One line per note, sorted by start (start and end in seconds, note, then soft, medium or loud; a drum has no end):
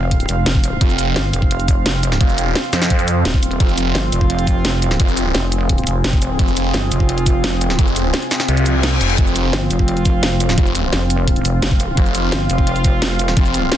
0.00 0.27 F1 loud
0.00 13.77 C4 medium
0.00 13.77 F4 medium
0.00 3.58 F5 medium
0.11 kick medium
0.11 closed hi-hat medium
0.20 closed hi-hat soft
0.20 cabasa soft
0.29 0.45 F1 loud
0.29 closed hi-hat medium
0.29 cabasa medium
0.46 0.80 F1 loud
0.46 snare loud
0.46 closed hi-hat medium
0.55 kick loud
0.64 closed hi-hat medium
0.64 cabasa medium
0.81 1.15 F1 loud
0.81 0.91 F3 medium
0.81 0.91 C4 medium
0.81 0.91 F4 loud
0.81 kick loud
0.81 closed hi-hat medium
0.90 cabasa soft
0.99 closed hi-hat medium
0.99 cabasa medium
1.16 1.32 G1 loud
1.16 snare loud
1.16 closed hi-hat medium
1.33 1.84 F1 loud
1.33 closed hi-hat medium
1.33 cabasa medium
1.42 kick medium
1.51 closed hi-hat medium
1.60 closed hi-hat soft
1.60 cabasa soft
1.68 kick loud
1.68 closed hi-hat medium
1.68 cabasa medium
1.86 2.19 F1 medium
1.86 snare loud
1.86 closed hi-hat medium
2.03 closed hi-hat medium
2.03 cabasa medium
2.12 snare soft
2.21 2.54 F1 loud
2.21 2.30 F3 medium
2.21 2.30 C4 medium
2.21 2.30 F4 loud
2.21 kick loud
2.21 closed hi-hat medium
2.29 cabasa soft
2.38 2.48 F3 medium
2.38 2.48 C4 medium
2.38 2.48 F4 medium
2.38 closed hi-hat medium
2.38 cabasa medium
2.55 snare loud
2.55 closed hi-hat medium
2.64 cabasa soft
2.73 3.24 F2 loud
2.73 snare medium
2.73 closed hi-hat medium
2.73 cabasa medium
2.82 snare medium
2.90 kick medium
2.90 closed hi-hat medium
2.99 closed hi-hat soft
2.99 cabasa soft
3.08 closed hi-hat medium
3.08 cabasa medium
3.25 3.59 D#1 medium
3.25 snare loud
3.25 closed hi-hat medium
3.34 kick loud
3.43 closed hi-hat medium
3.43 cabasa medium
3.51 closed hi-hat soft
3.60 3.94 F1 loud
3.60 3.70 F3 medium
3.60 3.70 C4 medium
3.60 3.70 F4 loud
3.60 9.16 G#4 medium
3.60 kick loud
3.60 closed hi-hat medium
3.69 cabasa soft
3.78 4.98 F3 loud
3.78 4.98 C4 loud
3.78 4.98 F4 loud
3.78 closed hi-hat medium
3.78 cabasa medium
3.95 4.11 G1 loud
3.95 snare loud
3.95 closed hi-hat medium
4.12 4.63 F1 loud
4.12 closed hi-hat medium
4.12 cabasa medium
4.21 kick medium
4.30 closed hi-hat medium
4.39 closed hi-hat soft
4.39 cabasa soft
4.47 kick loud
4.47 closed hi-hat medium
4.47 cabasa medium
4.65 4.98 F1 loud
4.65 snare loud
4.65 closed hi-hat medium
4.82 closed hi-hat medium
4.82 cabasa medium
4.91 snare soft
5.00 5.33 F1 loud
5.00 5.10 F3 medium
5.00 5.10 C4 medium
5.00 5.10 F4 loud
5.00 kick loud
5.00 closed hi-hat medium
5.08 cabasa soft
5.17 5.27 F3 medium
5.17 5.27 C4 medium
5.17 5.27 F4 medium
5.17 closed hi-hat medium
5.17 cabasa medium
5.35 5.85 F1 loud
5.35 snare loud
5.35 closed hi-hat loud
5.52 closed hi-hat medium
5.52 cabasa medium
5.69 kick medium
5.69 closed hi-hat medium
5.78 closed hi-hat soft
5.78 cabasa soft
5.87 6.03 F1 loud
5.87 closed hi-hat medium
5.87 cabasa medium
6.04 6.38 F1 loud
6.04 snare loud
6.04 closed hi-hat medium
6.13 kick loud
6.22 closed hi-hat medium
6.22 cabasa medium
6.39 6.73 F1 loud
6.39 6.49 F3 medium
6.39 6.49 C4 medium
6.39 6.49 F4 loud
6.39 kick loud
6.39 closed hi-hat loud
6.48 cabasa soft
6.57 7.77 F3 loud
6.57 7.77 C4 loud
6.57 7.77 F4 loud
6.57 closed hi-hat medium
6.57 cabasa medium
6.74 6.90 G1 loud
6.74 snare loud
6.74 closed hi-hat loud
6.91 7.42 F1 loud
6.91 closed hi-hat medium
6.91 cabasa medium
7.00 kick medium
7.09 closed hi-hat medium
7.18 closed hi-hat soft
7.18 cabasa soft
7.26 kick loud
7.26 closed hi-hat medium
7.26 cabasa medium
7.44 7.77 F1 medium
7.44 snare loud
7.44 closed hi-hat loud
7.61 closed hi-hat medium
7.61 cabasa medium
7.70 snare soft
7.79 8.12 F1 loud
7.79 7.89 F3 medium
7.79 7.89 C4 medium
7.79 7.89 F4 loud
7.79 kick loud
7.79 closed hi-hat loud
7.87 cabasa soft
7.96 closed hi-hat medium
7.96 cabasa medium
8.14 snare loud
8.14 closed hi-hat loud
8.22 closed hi-hat soft
8.22 cabasa soft
8.31 snare medium
8.31 closed hi-hat medium
8.31 cabasa medium
8.40 snare medium
8.48 8.99 C2 loud
8.48 closed hi-hat loud
8.48 reverse cymbal medium
8.57 closed hi-hat soft
8.57 cabasa soft
8.66 8.76 F3 medium
8.66 8.76 C4 medium
8.66 8.76 F4 loud
8.66 closed hi-hat medium
8.66 cabasa medium
8.83 snare loud
8.83 closed hi-hat loud
9.01 9.17 F1 loud
9.01 closed hi-hat medium
9.01 cabasa medium
9.10 closed hi-hat soft
9.18 9.52 F1 loud
9.18 9.28 F3 medium
9.18 9.28 C4 medium
9.18 9.28 F4 loud
9.18 13.77 F5 medium
9.18 kick loud
9.18 closed hi-hat loud
9.27 cabasa soft
9.36 10.56 F3 loud
9.36 10.56 C4 loud
9.36 10.56 F4 loud
9.36 closed hi-hat medium
9.36 cabasa medium
9.53 9.69 G1 loud
9.53 snare loud
9.53 closed hi-hat loud
9.71 10.22 F1 loud
9.71 closed hi-hat medium
9.71 cabasa medium
9.79 kick medium
9.88 closed hi-hat loud
9.97 closed hi-hat soft
9.97 cabasa soft
10.05 kick loud
10.05 closed hi-hat medium
10.05 cabasa medium
10.23 10.56 F1 loud
10.23 snare loud
10.23 closed hi-hat loud
10.40 closed hi-hat medium
10.40 cabasa medium
10.49 snare soft
10.58 10.91 F1 loud
10.58 10.68 F3 medium
10.58 10.68 C4 medium
10.58 10.68 F4 loud
10.58 kick loud
10.58 closed hi-hat loud
10.66 cabasa soft
10.75 10.85 F3 medium
10.75 10.85 C4 medium
10.75 10.85 F4 medium
10.75 closed hi-hat medium
10.75 cabasa medium
10.93 11.44 F1 loud
10.93 snare loud
10.93 closed hi-hat loud
11.10 closed hi-hat medium
11.10 cabasa medium
11.28 kick medium
11.28 closed hi-hat medium
11.36 closed hi-hat soft
11.36 cabasa soft
11.45 11.61 F1 loud
11.45 closed hi-hat medium
11.45 cabasa medium
11.62 11.96 F1 loud
11.62 snare loud
11.62 closed hi-hat medium
11.71 kick loud
11.80 closed hi-hat medium
11.80 cabasa medium
11.97 12.31 F1 medium
11.97 12.07 F3 medium
11.97 12.07 C4 medium
11.97 12.07 F4 loud
11.97 kick loud
11.97 closed hi-hat medium
12.06 cabasa soft
12.15 13.35 F3 loud
12.15 13.35 C4 loud
12.15 13.35 F4 loud
12.15 closed hi-hat medium
12.15 cabasa medium
12.32 12.48 G1 loud
12.32 snare loud
12.32 closed hi-hat medium
12.50 13.01 F1 loud
12.50 closed hi-hat medium
12.50 cabasa medium
12.58 kick medium
12.67 closed hi-hat medium
12.76 closed hi-hat soft
12.76 cabasa soft
12.84 kick loud
12.84 closed hi-hat medium
12.84 cabasa medium
13.02 13.35 F1 loud
13.02 snare loud
13.02 closed hi-hat medium
13.19 closed hi-hat medium
13.19 cabasa medium
13.28 snare soft
13.37 13.70 F1 loud
13.37 13.47 F3 medium
13.37 13.47 C4 medium
13.37 13.47 F4 loud
13.37 kick loud
13.37 closed hi-hat medium
13.46 cabasa soft
13.54 13.64 F3 medium
13.54 13.64 C4 medium
13.54 13.64 F4 medium
13.54 closed hi-hat medium
13.54 cabasa medium
13.72 snare loud
13.72 closed hi-hat medium